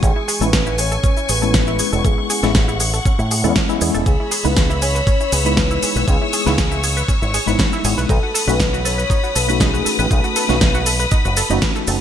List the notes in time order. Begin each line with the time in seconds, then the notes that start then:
0.03 A1 C#4 G#4 G#5 C#6, kick, shaker
0.16 E4
0.28 G#4, open hi-hat, shaker
0.41 A1 G#3 B3 C#4 E4 A4 B4, shaker
0.53 C#4, kick, snare, shaker
0.66 E4, shaker
0.78 G#4 C#5, open hi-hat, shaker
0.92 A4, shaker
1.04 C#4, kick, shaker
1.17 E4, shaker
1.29 A1 G#4 B4, open hi-hat, shaker
1.42 G#3 B3 C#4 E4 A4, shaker
1.54 C#4 B4, kick, snare, shaker
1.67 E4, shaker
1.79 G#4, muted fingered electric bass stroke, open hi-hat, shaker
1.93 E1 A4, shaker
2.05 A1 C#4 G#4 F#5, kick, shaker
2.18 E4
2.30 G#4, open hi-hat, shaker
2.43 A1 G#3 B3 C#4 E4 A4, snare, shaker
2.55 C#4, kick, snare, shaker
2.68 E4, shaker
2.80 G#4, open hi-hat, shaker
2.94 A4, shaker
3.05 C#4, kick, shaker
3.19 A2 E4, shaker
3.31 G#4, open hi-hat, shaker
3.44 E2 G#3 B3 C#4 E4 A4, shaker
3.56 C#4, kick, snare, shaker
3.69 G#3 B3 C#4 E4, shaker
3.81 E2 G#4, open hi-hat, shaker
3.94 E1 A4, shaker
4.06 C#2 C#4 G#4 C#5 B5 E6, kick, ride, shaker
4.20 E4
4.31 G#4, open hi-hat, ride, shaker
4.44 C#2 G#3 B3 D#4 E4 B4, shaker
4.57 C#4, kick, snare, ride, shaker
4.70 E4, shaker
4.82 G#4 C#5, open hi-hat, ride, shaker
4.95 B4, shaker
5.07 C#4, kick, ride, shaker
5.21 E4, shaker
5.32 C#2 G#4 B4, open hi-hat, ride, shaker
5.44 G#3 B3 D#4 E4 B4, shaker
5.57 C#4 B4, kick, snare, ride, shaker
5.71 E4, shaker
5.83 G#4, muted fingered electric bass stroke, open hi-hat, ride, shaker
5.96 B1 B4, shaker
6.07 C#2 C#4 G#4 C#6, kick, ride, shaker
6.22 E4
6.33 G#4, open hi-hat, ride, shaker
6.46 C#2 G#3 B3 D#4 E4 B4, snare, shaker
6.58 C#4, kick, snare, ride, shaker
6.72 E4, shaker
6.84 G#4, open hi-hat, ride, shaker
6.97 B4, shaker
7.08 C#4, kick, ride, shaker
7.22 G#1 E4, shaker
7.34 G#4, open hi-hat, ride, shaker
7.46 G#1 G#3 B3 D#4 E4 B4, shaker
7.59 C#4, kick, snare, ride, shaker
7.73 E4, shaker
7.84 G#1 G#4, open hi-hat, ride, shaker
7.97 B1 B4, shaker
8.09 B1 D#4 A4 B4 B5 D#6, kick, ride, shaker
8.23 F#4
8.34 A4, open hi-hat, ride, shaker
8.47 B1 A3 C#4 D#4 F#4 B4, shaker
8.60 D#4, kick, snare, ride, shaker
8.73 F#4, shaker
8.85 A4 C#5, open hi-hat, ride, shaker
8.98 B4, shaker
9.10 D#4, kick, ride, shaker
9.24 F#4, shaker
9.36 B1 A4 B4, open hi-hat, ride, shaker
9.48 A3 C#4 D#4 F#4 B4, shaker
9.60 D#4 G#4, kick, snare, ride, shaker
9.74 F#4, shaker
9.85 A4, muted fingered electric bass stroke, open hi-hat, ride, shaker
9.99 A1 B4, shaker
10.11 B1 D#4 A4 B5, kick, ride, shaker
10.24 F#4, shaker
10.36 A4 B4, open hi-hat, ride, shaker
10.49 B1 A3 C#4 D#4 F#4 B4, snare, shaker
10.61 D#4, kick, snare, ride, shaker
10.74 F#4, shaker
10.86 A4, open hi-hat, ride, shaker
11.00 B4, shaker
11.11 D#4, kick, ride, shaker
11.25 F#1 F#4, shaker
11.37 A4, open hi-hat, ride, shaker
11.50 F#1 A3 C#4 D#4 F#4, shaker
11.62 B4, kick, snare, ride, shaker
11.76 A4, shaker
11.87 F#1 A4, open hi-hat, ride, shaker